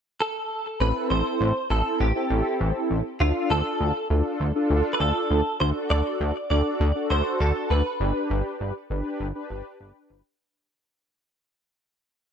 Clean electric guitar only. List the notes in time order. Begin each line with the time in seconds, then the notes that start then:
0.20 A4
0.80 B4
1.10 C5
1.70 A4
2.00 G4
3.20 F4
3.50 A4
4.93 B4
5.00 A4
5.60 C5
5.90 D5
6.50 D5
7.10 C5
7.40 A4
7.70 B4